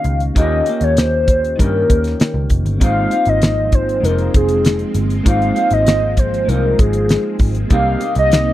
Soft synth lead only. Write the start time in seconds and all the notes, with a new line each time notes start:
Already playing: F5
0.37 D#5
0.80 C#5 D#5
0.98 C5
1.60 A#4
2.83 F5
3.29 D#5
3.74 C5
4.05 A#4
4.36 G#4
5.28 F5
5.73 D#5
6.19 C5
6.49 A#4
6.79 G#4
7.72 F5
8.19 D#5